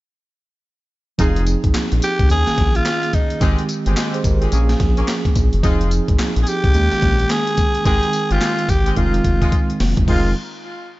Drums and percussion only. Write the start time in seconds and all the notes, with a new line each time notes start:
1.19 kick, closed hi-hat, tambourine
1.36 closed hi-hat
1.47 closed hi-hat, tambourine
1.64 kick, closed hi-hat
1.74 snare, clap, closed hi-hat, tambourine
1.92 closed hi-hat
2.02 closed hi-hat, tambourine
2.19 kick, closed hi-hat
2.30 closed hi-hat, tambourine
2.47 snare, closed hi-hat
2.58 kick, snare, closed hi-hat
2.75 closed hi-hat
2.85 snare, clap, closed hi-hat, tambourine
3.03 closed hi-hat
3.13 kick, closed hi-hat, tambourine
3.30 closed hi-hat
3.41 kick, closed hi-hat, tambourine
3.58 closed hi-hat
3.69 closed hi-hat, tambourine
3.86 closed hi-hat
3.96 snare, clap, closed hi-hat, tambourine
4.14 closed hi-hat
4.24 kick, closed hi-hat, tambourine
4.42 closed hi-hat
4.52 closed hi-hat, tambourine
4.69 snare, closed hi-hat
4.80 kick, snare, closed hi-hat
4.97 closed hi-hat
5.08 snare, clap, closed hi-hat, tambourine
5.25 kick, closed hi-hat
5.36 kick, closed hi-hat, tambourine
5.53 closed hi-hat
5.63 kick, closed hi-hat, tambourine
5.81 closed hi-hat
5.91 closed hi-hat, tambourine
6.08 kick, closed hi-hat
6.19 snare, clap, closed hi-hat, tambourine
6.36 closed hi-hat
6.47 closed hi-hat, tambourine
6.64 kick, closed hi-hat
6.74 closed hi-hat, tambourine
6.91 snare, closed hi-hat
7.02 kick, snare, closed hi-hat
7.19 closed hi-hat
7.30 snare, clap, closed hi-hat, tambourine
7.47 closed hi-hat
7.57 kick, closed hi-hat, tambourine
7.75 closed hi-hat
7.85 kick, closed hi-hat, tambourine
8.03 closed hi-hat
8.13 closed hi-hat, tambourine
8.31 closed hi-hat
8.41 snare, clap, closed hi-hat, tambourine
8.59 closed hi-hat
8.69 kick, closed hi-hat, tambourine
8.86 closed hi-hat
8.96 kick, closed hi-hat
9.14 closed hi-hat
9.24 kick, closed hi-hat
9.42 kick, closed hi-hat
9.52 kick, closed hi-hat
9.70 closed hi-hat
9.80 snare, open hi-hat
9.97 kick, closed hi-hat
10.08 kick, crash